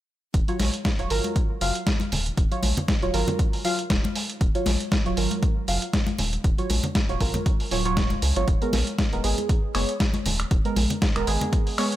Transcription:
0.34 D#1, kick, closed hi-hat
0.48 F#3 F4 C#5, closed hi-hat
0.59 A#1, snare, open hi-hat, high conga
0.74 closed hi-hat
0.85 kick, snare, closed hi-hat
0.99 D#1 F#3 F4 C#5, closed hi-hat
1.10 G#1 F#3 F4 A#4, open hi-hat
1.24 closed hi-hat, high conga
1.36 kick, closed hi-hat
1.61 F#1 F#3 F4 F5, open hi-hat
1.75 closed hi-hat
1.87 kick, snare, closed hi-hat
2.00 closed hi-hat, high conga
2.12 D#1, open hi-hat, low conga
2.26 closed hi-hat
2.37 D#1, kick, closed hi-hat
2.51 F#3 F4 C#5, closed hi-hat
2.63 A#1, open hi-hat, high conga
2.77 closed hi-hat, low conga
2.88 kick, snare, closed hi-hat
3.02 D#1 F#3 F4 C#5, closed hi-hat
3.13 G#1 F#3 F4 A#4, open hi-hat
3.27 closed hi-hat, high conga, low conga
3.39 kick, closed hi-hat
3.53 open hi-hat
3.64 F#3 F4 F5, open hi-hat
3.79 closed hi-hat
3.90 D#1, kick, snare, closed hi-hat
4.04 closed hi-hat, high conga
4.15 open hi-hat
4.30 closed hi-hat
4.41 D#1, kick, closed hi-hat
4.55 F#3 F4 C#5, closed hi-hat
4.66 A#1, snare, open hi-hat, high conga
4.80 closed hi-hat
4.92 kick, snare, closed hi-hat
5.05 D#1 F#3 F4 C#5, closed hi-hat
5.17 G#1 F#3 F4 A#4, open hi-hat
5.31 closed hi-hat, high conga
5.43 kick, closed hi-hat
5.68 F#1 F#3 F4 F5, open hi-hat
5.82 closed hi-hat
5.93 kick, snare, closed hi-hat
6.07 closed hi-hat, high conga
6.19 D#1, open hi-hat, low conga
6.33 closed hi-hat
6.44 D#1, kick, closed hi-hat
6.58 F#3 F4 C#5, closed hi-hat
6.70 A#1, open hi-hat, high conga
6.83 closed hi-hat, low conga
6.95 kick, snare, closed hi-hat
7.09 D#1 F#3 F4 C#5, closed hi-hat
7.20 G#1 F#3 F4 A#4, kick, open hi-hat
7.34 closed hi-hat, high conga, low conga
7.46 kick, closed hi-hat
7.60 open hi-hat
7.71 D#1 F#3 F4 C#5, open hi-hat
7.85 F#3 F4 C#5, closed hi-hat
7.97 kick, snare, closed hi-hat
8.10 closed hi-hat, high conga
8.22 C#2, open hi-hat
8.36 G#1 F#3 F4 C#5, closed hi-hat
8.48 D#1, kick, closed hi-hat
8.61 G#3 B3 A#4, closed hi-hat
8.73 A#1, snare, open hi-hat, high conga
8.87 closed hi-hat
8.98 kick, snare, closed hi-hat
9.12 D#1 G#3 B3 A#4, closed hi-hat
9.24 G#1 G#3 B3 G#4, open hi-hat
9.38 closed hi-hat, high conga
9.49 kick, closed hi-hat
9.74 F#1 G#3 B3 C#5, finger snap, open hi-hat
9.89 closed hi-hat
10.00 kick, snare, closed hi-hat
10.14 closed hi-hat, high conga
10.26 D#1, open hi-hat, low conga
10.40 finger snap, closed hi-hat
10.51 D#1, kick, closed hi-hat
10.65 G#3 B3 A#4, closed hi-hat
10.76 A#1, open hi-hat, high conga
10.90 closed hi-hat, low conga
11.02 kick, snare, closed hi-hat
11.16 D#1 G#3 B3 A#4, finger snap, closed hi-hat
11.27 G#1 G#3 B3 G#4, open hi-hat
11.41 closed hi-hat, high conga, low conga
11.53 kick, closed hi-hat
11.67 open hi-hat
11.78 G#3 B3 C#5, finger snap, open hi-hat
11.92 closed hi-hat

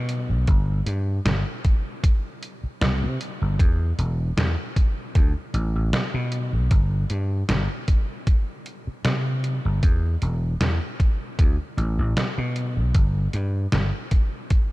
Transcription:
Already playing: B2
0.09 closed hi-hat
0.30 B1
0.47 G1, kick, closed hi-hat
0.86 G2, closed hi-hat
1.25 G1, snare, closed hi-hat
1.65 kick, closed hi-hat
2.04 kick, closed hi-hat
2.43 closed hi-hat
2.64 muted slap bass stroke
2.81 C2, snare, closed hi-hat
3.02 C3
3.21 closed hi-hat
3.42 G1
3.59 E2, kick, closed hi-hat
3.98 E1, closed hi-hat
4.37 E2, snare, closed hi-hat
4.76 kick, closed hi-hat
5.15 D2, kick, closed hi-hat
5.54 A1, closed hi-hat
5.76 A1
5.93 snare, closed hi-hat
6.14 B2
6.32 closed hi-hat
6.53 B1
6.71 G1, kick, closed hi-hat
7.10 G2, closed hi-hat
7.49 G1, snare, closed hi-hat
7.88 kick, closed hi-hat
8.27 kick, closed hi-hat
8.66 closed hi-hat
8.87 muted slap bass stroke
9.05 C3, snare, closed hi-hat
9.44 closed hi-hat
9.65 G1
9.83 E2, kick, closed hi-hat
10.22 E1, closed hi-hat
10.61 E2, snare, closed hi-hat
11.00 kick, closed hi-hat
11.39 D2, kick, closed hi-hat
11.77 A1, closed hi-hat
11.98 A1
12.17 snare, closed hi-hat
12.38 B2
12.56 closed hi-hat
12.77 B1
12.95 G1, kick, closed hi-hat
13.33 G2, closed hi-hat
13.72 G1, snare, closed hi-hat
14.11 kick, closed hi-hat
14.50 kick, closed hi-hat

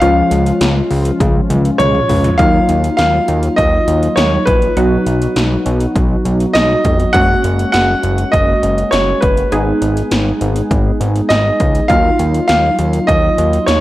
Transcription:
0.00 C#2 F3 G#3 C#4 F4 F5, closed hi-hat
0.31 C#2, closed hi-hat
0.46 closed hi-hat
0.61 C#2, snare, closed hi-hat
0.91 C#2, open hi-hat
1.05 closed hi-hat
1.20 C#2, kick, closed hi-hat, high tom
1.50 C#2, closed hi-hat, mid tom
1.65 closed hi-hat
1.78 C#2 C#5, closed hi-hat, mid tom
1.95 mid tom
2.09 C#2, floor tom, open hi-hat
2.24 closed hi-hat, floor tom
2.38 D#2 F#3 A#3 D#4 F4 F5, kick, closed hi-hat
2.69 D#2, closed hi-hat
2.84 closed hi-hat
2.97 D#2 F5, snare, closed hi-hat
3.28 D#2, closed hi-hat
3.43 closed hi-hat
3.56 D#2 D#5, kick, closed hi-hat
3.88 D#2, closed hi-hat
4.03 closed hi-hat
4.16 D#2 C#5, snare, closed hi-hat
4.45 A#1 B4, kick, closed hi-hat
4.62 closed hi-hat
4.77 B1 F#3 B3 D#4 F#4, closed hi-hat
5.06 B1, closed hi-hat
5.22 closed hi-hat
5.36 B1, snare, closed hi-hat
5.66 B1, closed hi-hat
5.80 closed hi-hat
5.96 B1, kick, closed hi-hat
6.25 B1, closed hi-hat
6.40 closed hi-hat
6.53 B1 D#5, snare, closed hi-hat
6.85 F1, kick, closed hi-hat
7.00 closed hi-hat
7.13 F#1 G#3 A#3 C#4 F#4 F#5, kick, closed hi-hat
7.44 F#1, closed hi-hat
7.59 closed hi-hat
7.72 F#1 F#5, snare, closed hi-hat
8.03 F#1, closed hi-hat
8.18 closed hi-hat
8.32 F#1 D#5, kick, closed hi-hat
8.63 F#1, closed hi-hat
8.78 closed hi-hat
8.91 F#1 C#5, snare, closed hi-hat
9.21 F#1 B4, kick, closed hi-hat
9.37 closed hi-hat
9.52 G#1 G#3 B3 D#4 G#4, closed hi-hat
9.82 G#1, closed hi-hat
9.97 closed hi-hat
10.11 G#1, snare, closed hi-hat
10.41 G#1, closed hi-hat
10.56 closed hi-hat
10.71 G#1, kick, closed hi-hat
11.01 G#1, closed hi-hat
11.16 closed hi-hat
11.29 G#1 D#5, snare, closed hi-hat
11.60 C#2, kick, closed hi-hat
11.75 closed hi-hat
11.88 D#2 F#3 A#3 D#4 F4 F5, kick, closed hi-hat
12.19 D#2, closed hi-hat
12.34 closed hi-hat
12.48 D#2 F5, snare, closed hi-hat
12.79 D#2, closed hi-hat
12.93 closed hi-hat
13.07 D#2 D#5, kick, closed hi-hat
13.38 D#2, closed hi-hat
13.53 closed hi-hat
13.66 D#2 C#5, snare, closed hi-hat

